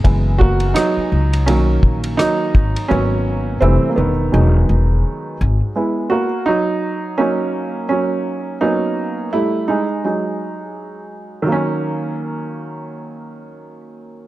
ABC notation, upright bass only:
X:1
M:4/4
L:1/16
Q:"Swing 16ths" 1/4=84
K:D#phr
V:1 name="Upright bass" clef=bass
F,,,4 z2 C,,2 B,,,2 A,,,2 z2 G,,, z | G,,,4 =F,,, z E,,,2 E,,,2 E,,,2 z2 G,,, z | z16 | z16 |
z16 |]